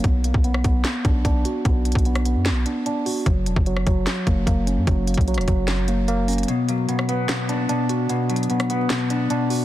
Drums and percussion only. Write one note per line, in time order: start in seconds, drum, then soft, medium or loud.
0.04 kick loud
0.04 closed hi-hat medium
0.24 closed hi-hat medium
0.34 kick loud
0.44 closed hi-hat medium
0.54 cross-stick loud
0.64 kick loud
0.64 closed hi-hat medium
0.84 snare loud
0.84 clap medium
0.84 closed hi-hat medium
1.05 kick loud
1.05 closed hi-hat medium
1.25 kick medium
1.25 closed hi-hat medium
1.45 closed hi-hat medium
1.65 kick loud
1.65 closed hi-hat medium
1.85 closed hi-hat medium
1.92 kick loud
1.92 closed hi-hat medium
1.99 closed hi-hat medium
2.05 closed hi-hat medium
2.15 cross-stick loud
2.15 closed hi-hat medium
2.25 closed hi-hat medium
2.46 snare loud
2.46 clap medium
2.46 closed hi-hat medium
2.66 closed hi-hat medium
2.86 closed hi-hat medium
3.06 open hi-hat medium
3.26 kick loud
3.26 closed hi-hat medium
3.46 closed hi-hat medium
3.56 kick loud
3.66 closed hi-hat medium
3.77 cross-stick loud
3.87 kick loud
3.87 closed hi-hat medium
4.07 snare loud
4.07 clap medium
4.07 closed hi-hat medium
4.27 kick medium
4.27 closed hi-hat medium
4.47 kick medium
4.47 closed hi-hat medium
4.67 closed hi-hat medium
4.87 kick loud
4.87 closed hi-hat medium
5.07 closed hi-hat medium
5.14 kick loud
5.14 closed hi-hat medium
5.21 closed hi-hat soft
5.28 closed hi-hat medium
5.34 cross-stick loud
5.34 closed hi-hat medium
5.41 closed hi-hat medium
5.48 kick loud
5.48 closed hi-hat medium
5.68 snare loud
5.68 clap medium
5.68 closed hi-hat medium
5.88 closed hi-hat medium
6.08 closed hi-hat medium
6.28 closed hi-hat soft
6.28 open hi-hat medium
6.33 closed hi-hat medium
6.38 closed hi-hat medium
6.43 closed hi-hat medium
6.48 closed hi-hat medium
6.68 closed hi-hat medium
6.89 closed hi-hat medium
6.99 cross-stick loud
7.09 closed hi-hat medium
7.29 snare loud
7.29 clap medium
7.29 closed hi-hat medium
7.49 closed hi-hat medium
7.69 closed hi-hat medium
7.89 closed hi-hat medium
8.09 closed hi-hat medium
8.30 closed hi-hat medium
8.36 closed hi-hat medium
8.43 closed hi-hat medium
8.50 closed hi-hat medium
8.60 cross-stick loud
8.60 closed hi-hat medium
8.70 closed hi-hat medium
8.90 snare loud
8.90 clap medium
8.90 closed hi-hat medium
9.10 closed hi-hat medium
9.30 closed hi-hat medium
9.50 open hi-hat medium